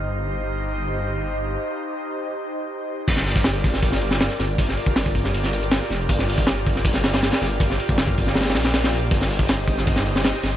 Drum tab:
CC |--------------------------------|--------------------------------|x-------------------------------|--------------------------------|
HH |--------------------------------|--------------------------------|o---o---o---o---o---o---o---o---|o---o---o---o---o---o-x-o---o---|
SD |--------------------------------|--------------------------------|--o-----o-----o---o---o-o-o-o---|--o-----o-----o---o-----o-o-o---|
BD |--------------------------------|--------------------------------|o-----o-----o---o---------------|o-----o---o-o-------------------|

CC |--------------------------------|--------------------------------|--------------------------------|
HH |o---o---o---o---o---o-o-o-o-o---|o---o---o---o---ooooo-o-o-o-o---|o---o---o---o---o---o---o---o---|
SD |--o-----o-----o---o-o-o-o-o-o---|--o-----o-----o-ooooo-o-o-o-o---|--o-----o-----o---o---o-o-o-o---|
BD |o-----o-----o---o---------------|o-----o---o-o-------------------|o-----o-----o---o---------------|